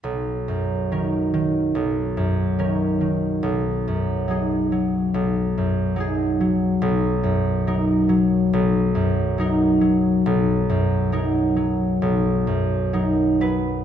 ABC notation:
X:1
M:4/4
L:1/8
Q:1/4=70
K:B
V:1 name="Harp" clef=bass
B,,, F,, [D,CA] D, B,,, F,, [D,CA] D, | B,,, F,, [F,DG] F, B,,, F,, [F,DG] F, | B,,, F,, [F,DA] F, B,,, F,, [F,DA] F, | B,,, F,, [F,DA] F, B,,, F,, [F,DA] [F,B] |]